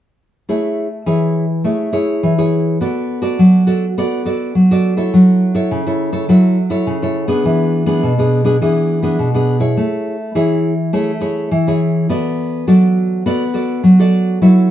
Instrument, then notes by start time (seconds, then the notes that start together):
nylon-string guitar
0.49 A3 E4 G#4 C#5
1.06 E3 E4 G#4 C#5
1.64 A3 E4 G#4 C#5
1.93 E4 G#4 C#5
2.23 E3
2.38 E4 G#4 C#5
2.81 B3 F#4 A4 D5
3.22 F#4 A4 D5
3.39 F#3
3.67 F#4 A4 D5
3.98 B3 F#4 A4 D5
4.25 F#4 A4 D5
4.55 F#3
4.71 F#4 A4 D5
4.97 E4 A4 C#5
5.14 F#3
5.55 E4 A4 C#5
5.71 C#3
5.87 E4 A4 C#5
6.12 E4 A4 C#5
6.29 F#3 E4 A4 C#5
6.70 E4 A4 C#5
6.87 C#3
7.02 E4 A4 C#5
7.28 B3 D4 G#4
7.45 E3
7.86 B3 D4 G#4
8.03 B2
8.18 B3 D4 G#4
8.44 B3 D4 G#4
8.61 E3 B3 D4 G#4
9.02 B3 D4 G#4
9.19 B2
9.34 B3 D4 G#4
9.60 E4 G#4 C#5
9.77 A3
10.35 E3 E4 G#4 C#5
10.93 A3 E4 G#4 C#5
11.21 E4 G#4 C#5
11.51 E3
11.67 E4 G#4 C#5
12.09 B3 F#4 A4 D5
12.67 F#3 F#4 A4 D5
13.26 B3 F#4 A4 D5
13.54 F#4 A4 D5
13.84 F#3
13.99 F#4 A4 D5
14.42 F#3 E4 A4 C#5